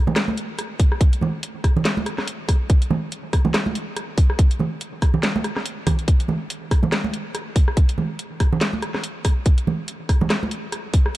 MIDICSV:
0, 0, Header, 1, 2, 480
1, 0, Start_track
1, 0, Tempo, 422535
1, 1145, Time_signature, 4, 2, 24, 8
1, 12689, End_track
2, 0, Start_track
2, 0, Title_t, "Drums"
2, 81, Note_on_c, 9, 64, 96
2, 87, Note_on_c, 9, 63, 76
2, 184, Note_on_c, 9, 37, 80
2, 184, Note_on_c, 9, 38, 124
2, 184, Note_on_c, 9, 42, 85
2, 195, Note_off_c, 9, 64, 0
2, 200, Note_off_c, 9, 63, 0
2, 298, Note_off_c, 9, 37, 0
2, 298, Note_off_c, 9, 38, 0
2, 298, Note_off_c, 9, 42, 0
2, 318, Note_on_c, 9, 63, 95
2, 426, Note_on_c, 9, 42, 53
2, 431, Note_off_c, 9, 63, 0
2, 539, Note_off_c, 9, 42, 0
2, 666, Note_on_c, 9, 37, 50
2, 666, Note_on_c, 9, 42, 83
2, 779, Note_off_c, 9, 37, 0
2, 779, Note_off_c, 9, 42, 0
2, 904, Note_on_c, 9, 36, 109
2, 904, Note_on_c, 9, 46, 97
2, 1017, Note_off_c, 9, 36, 0
2, 1018, Note_off_c, 9, 46, 0
2, 1043, Note_on_c, 9, 37, 50
2, 1144, Note_on_c, 9, 36, 127
2, 1145, Note_on_c, 9, 42, 85
2, 1156, Note_off_c, 9, 37, 0
2, 1257, Note_off_c, 9, 36, 0
2, 1258, Note_off_c, 9, 42, 0
2, 1283, Note_on_c, 9, 42, 53
2, 1379, Note_on_c, 9, 63, 71
2, 1391, Note_on_c, 9, 64, 90
2, 1397, Note_off_c, 9, 42, 0
2, 1493, Note_off_c, 9, 63, 0
2, 1505, Note_off_c, 9, 64, 0
2, 1625, Note_on_c, 9, 42, 79
2, 1738, Note_off_c, 9, 42, 0
2, 1863, Note_on_c, 9, 36, 63
2, 1865, Note_on_c, 9, 37, 50
2, 1865, Note_on_c, 9, 46, 63
2, 1977, Note_off_c, 9, 36, 0
2, 1978, Note_off_c, 9, 37, 0
2, 1978, Note_off_c, 9, 46, 0
2, 2005, Note_on_c, 9, 64, 92
2, 2105, Note_on_c, 9, 38, 127
2, 2105, Note_on_c, 9, 42, 84
2, 2119, Note_off_c, 9, 64, 0
2, 2218, Note_off_c, 9, 38, 0
2, 2218, Note_off_c, 9, 42, 0
2, 2240, Note_on_c, 9, 63, 98
2, 2343, Note_on_c, 9, 37, 49
2, 2343, Note_on_c, 9, 42, 55
2, 2354, Note_off_c, 9, 63, 0
2, 2457, Note_off_c, 9, 37, 0
2, 2457, Note_off_c, 9, 42, 0
2, 2481, Note_on_c, 9, 37, 52
2, 2481, Note_on_c, 9, 38, 40
2, 2585, Note_on_c, 9, 42, 84
2, 2595, Note_off_c, 9, 37, 0
2, 2595, Note_off_c, 9, 38, 0
2, 2698, Note_off_c, 9, 42, 0
2, 2824, Note_on_c, 9, 36, 68
2, 2824, Note_on_c, 9, 37, 51
2, 2824, Note_on_c, 9, 46, 94
2, 2937, Note_off_c, 9, 36, 0
2, 2938, Note_off_c, 9, 37, 0
2, 2938, Note_off_c, 9, 46, 0
2, 3063, Note_on_c, 9, 42, 81
2, 3064, Note_on_c, 9, 36, 127
2, 3177, Note_off_c, 9, 36, 0
2, 3177, Note_off_c, 9, 42, 0
2, 3201, Note_on_c, 9, 42, 55
2, 3300, Note_on_c, 9, 64, 90
2, 3304, Note_on_c, 9, 63, 74
2, 3315, Note_off_c, 9, 42, 0
2, 3413, Note_off_c, 9, 64, 0
2, 3417, Note_off_c, 9, 63, 0
2, 3544, Note_on_c, 9, 42, 76
2, 3658, Note_off_c, 9, 42, 0
2, 3784, Note_on_c, 9, 36, 65
2, 3784, Note_on_c, 9, 37, 54
2, 3784, Note_on_c, 9, 46, 64
2, 3898, Note_off_c, 9, 36, 0
2, 3898, Note_off_c, 9, 37, 0
2, 3898, Note_off_c, 9, 46, 0
2, 3916, Note_on_c, 9, 64, 97
2, 3921, Note_on_c, 9, 63, 87
2, 4024, Note_on_c, 9, 37, 80
2, 4024, Note_on_c, 9, 38, 127
2, 4024, Note_on_c, 9, 42, 86
2, 4030, Note_off_c, 9, 64, 0
2, 4035, Note_off_c, 9, 63, 0
2, 4137, Note_off_c, 9, 37, 0
2, 4137, Note_off_c, 9, 38, 0
2, 4137, Note_off_c, 9, 42, 0
2, 4160, Note_on_c, 9, 63, 95
2, 4264, Note_on_c, 9, 42, 51
2, 4274, Note_off_c, 9, 63, 0
2, 4377, Note_off_c, 9, 42, 0
2, 4504, Note_on_c, 9, 37, 51
2, 4504, Note_on_c, 9, 42, 83
2, 4618, Note_off_c, 9, 37, 0
2, 4618, Note_off_c, 9, 42, 0
2, 4744, Note_on_c, 9, 36, 118
2, 4744, Note_on_c, 9, 46, 90
2, 4858, Note_off_c, 9, 36, 0
2, 4858, Note_off_c, 9, 46, 0
2, 4882, Note_on_c, 9, 37, 53
2, 4985, Note_on_c, 9, 36, 125
2, 4985, Note_on_c, 9, 42, 80
2, 4996, Note_off_c, 9, 37, 0
2, 5098, Note_off_c, 9, 36, 0
2, 5099, Note_off_c, 9, 42, 0
2, 5122, Note_on_c, 9, 42, 51
2, 5219, Note_on_c, 9, 63, 70
2, 5227, Note_on_c, 9, 64, 85
2, 5236, Note_off_c, 9, 42, 0
2, 5333, Note_off_c, 9, 63, 0
2, 5340, Note_off_c, 9, 64, 0
2, 5464, Note_on_c, 9, 42, 73
2, 5578, Note_off_c, 9, 42, 0
2, 5704, Note_on_c, 9, 37, 55
2, 5704, Note_on_c, 9, 46, 62
2, 5705, Note_on_c, 9, 36, 62
2, 5818, Note_off_c, 9, 36, 0
2, 5818, Note_off_c, 9, 37, 0
2, 5818, Note_off_c, 9, 46, 0
2, 5837, Note_on_c, 9, 64, 96
2, 5945, Note_on_c, 9, 38, 126
2, 5945, Note_on_c, 9, 42, 79
2, 5951, Note_off_c, 9, 64, 0
2, 6058, Note_off_c, 9, 38, 0
2, 6058, Note_off_c, 9, 42, 0
2, 6085, Note_on_c, 9, 63, 104
2, 6184, Note_on_c, 9, 37, 54
2, 6184, Note_on_c, 9, 42, 51
2, 6199, Note_off_c, 9, 63, 0
2, 6297, Note_off_c, 9, 37, 0
2, 6297, Note_off_c, 9, 42, 0
2, 6322, Note_on_c, 9, 37, 55
2, 6322, Note_on_c, 9, 38, 38
2, 6425, Note_on_c, 9, 42, 77
2, 6436, Note_off_c, 9, 37, 0
2, 6436, Note_off_c, 9, 38, 0
2, 6538, Note_off_c, 9, 42, 0
2, 6665, Note_on_c, 9, 36, 68
2, 6665, Note_on_c, 9, 37, 54
2, 6665, Note_on_c, 9, 46, 92
2, 6665, Note_on_c, 9, 64, 92
2, 6778, Note_off_c, 9, 36, 0
2, 6778, Note_off_c, 9, 37, 0
2, 6778, Note_off_c, 9, 46, 0
2, 6778, Note_off_c, 9, 64, 0
2, 6802, Note_on_c, 9, 42, 37
2, 6905, Note_off_c, 9, 42, 0
2, 6905, Note_on_c, 9, 36, 118
2, 6905, Note_on_c, 9, 42, 77
2, 7019, Note_off_c, 9, 36, 0
2, 7019, Note_off_c, 9, 42, 0
2, 7043, Note_on_c, 9, 42, 52
2, 7137, Note_on_c, 9, 63, 69
2, 7143, Note_on_c, 9, 64, 83
2, 7156, Note_off_c, 9, 42, 0
2, 7250, Note_off_c, 9, 63, 0
2, 7256, Note_off_c, 9, 64, 0
2, 7385, Note_on_c, 9, 42, 75
2, 7499, Note_off_c, 9, 42, 0
2, 7625, Note_on_c, 9, 36, 63
2, 7626, Note_on_c, 9, 37, 57
2, 7626, Note_on_c, 9, 46, 62
2, 7739, Note_off_c, 9, 36, 0
2, 7739, Note_off_c, 9, 37, 0
2, 7739, Note_off_c, 9, 46, 0
2, 7756, Note_on_c, 9, 63, 90
2, 7766, Note_on_c, 9, 64, 88
2, 7866, Note_on_c, 9, 37, 84
2, 7866, Note_on_c, 9, 38, 122
2, 7866, Note_on_c, 9, 42, 76
2, 7870, Note_off_c, 9, 63, 0
2, 7880, Note_off_c, 9, 64, 0
2, 7979, Note_off_c, 9, 37, 0
2, 7979, Note_off_c, 9, 38, 0
2, 7979, Note_off_c, 9, 42, 0
2, 8000, Note_on_c, 9, 63, 99
2, 8106, Note_on_c, 9, 42, 51
2, 8114, Note_off_c, 9, 63, 0
2, 8219, Note_off_c, 9, 42, 0
2, 8345, Note_on_c, 9, 37, 54
2, 8345, Note_on_c, 9, 42, 76
2, 8459, Note_off_c, 9, 37, 0
2, 8459, Note_off_c, 9, 42, 0
2, 8585, Note_on_c, 9, 36, 111
2, 8586, Note_on_c, 9, 46, 88
2, 8699, Note_off_c, 9, 36, 0
2, 8699, Note_off_c, 9, 46, 0
2, 8723, Note_on_c, 9, 37, 56
2, 8825, Note_on_c, 9, 36, 113
2, 8826, Note_on_c, 9, 42, 76
2, 8836, Note_off_c, 9, 37, 0
2, 8939, Note_off_c, 9, 36, 0
2, 8939, Note_off_c, 9, 42, 0
2, 8963, Note_on_c, 9, 42, 51
2, 9062, Note_on_c, 9, 64, 72
2, 9067, Note_on_c, 9, 63, 66
2, 9076, Note_off_c, 9, 42, 0
2, 9176, Note_off_c, 9, 64, 0
2, 9181, Note_off_c, 9, 63, 0
2, 9305, Note_on_c, 9, 42, 74
2, 9419, Note_off_c, 9, 42, 0
2, 9544, Note_on_c, 9, 37, 56
2, 9544, Note_on_c, 9, 46, 62
2, 9545, Note_on_c, 9, 36, 59
2, 9657, Note_off_c, 9, 37, 0
2, 9657, Note_off_c, 9, 46, 0
2, 9659, Note_off_c, 9, 36, 0
2, 9685, Note_on_c, 9, 64, 87
2, 9784, Note_on_c, 9, 38, 118
2, 9784, Note_on_c, 9, 42, 79
2, 9799, Note_off_c, 9, 64, 0
2, 9898, Note_off_c, 9, 38, 0
2, 9898, Note_off_c, 9, 42, 0
2, 9920, Note_on_c, 9, 63, 83
2, 10025, Note_on_c, 9, 37, 55
2, 10025, Note_on_c, 9, 42, 50
2, 10033, Note_off_c, 9, 63, 0
2, 10138, Note_off_c, 9, 37, 0
2, 10138, Note_off_c, 9, 42, 0
2, 10162, Note_on_c, 9, 37, 55
2, 10162, Note_on_c, 9, 38, 37
2, 10264, Note_on_c, 9, 42, 77
2, 10275, Note_off_c, 9, 37, 0
2, 10275, Note_off_c, 9, 38, 0
2, 10378, Note_off_c, 9, 42, 0
2, 10504, Note_on_c, 9, 37, 57
2, 10504, Note_on_c, 9, 46, 95
2, 10505, Note_on_c, 9, 36, 64
2, 10618, Note_off_c, 9, 37, 0
2, 10618, Note_off_c, 9, 46, 0
2, 10619, Note_off_c, 9, 36, 0
2, 10743, Note_on_c, 9, 42, 76
2, 10745, Note_on_c, 9, 36, 116
2, 10857, Note_off_c, 9, 42, 0
2, 10858, Note_off_c, 9, 36, 0
2, 10881, Note_on_c, 9, 42, 52
2, 10988, Note_on_c, 9, 64, 77
2, 10991, Note_on_c, 9, 63, 60
2, 10995, Note_off_c, 9, 42, 0
2, 11101, Note_off_c, 9, 64, 0
2, 11104, Note_off_c, 9, 63, 0
2, 11223, Note_on_c, 9, 42, 75
2, 11337, Note_off_c, 9, 42, 0
2, 11464, Note_on_c, 9, 36, 59
2, 11464, Note_on_c, 9, 37, 55
2, 11464, Note_on_c, 9, 46, 64
2, 11578, Note_off_c, 9, 36, 0
2, 11578, Note_off_c, 9, 37, 0
2, 11578, Note_off_c, 9, 46, 0
2, 11600, Note_on_c, 9, 63, 77
2, 11603, Note_on_c, 9, 64, 97
2, 11704, Note_on_c, 9, 37, 86
2, 11704, Note_on_c, 9, 38, 116
2, 11704, Note_on_c, 9, 42, 80
2, 11714, Note_off_c, 9, 63, 0
2, 11717, Note_off_c, 9, 64, 0
2, 11817, Note_off_c, 9, 37, 0
2, 11817, Note_off_c, 9, 38, 0
2, 11817, Note_off_c, 9, 42, 0
2, 11848, Note_on_c, 9, 63, 97
2, 11943, Note_on_c, 9, 42, 51
2, 11961, Note_off_c, 9, 63, 0
2, 12057, Note_off_c, 9, 42, 0
2, 12183, Note_on_c, 9, 37, 54
2, 12183, Note_on_c, 9, 42, 79
2, 12296, Note_off_c, 9, 37, 0
2, 12296, Note_off_c, 9, 42, 0
2, 12423, Note_on_c, 9, 46, 97
2, 12424, Note_on_c, 9, 36, 103
2, 12537, Note_off_c, 9, 46, 0
2, 12538, Note_off_c, 9, 36, 0
2, 12562, Note_on_c, 9, 37, 55
2, 12675, Note_off_c, 9, 37, 0
2, 12689, End_track
0, 0, End_of_file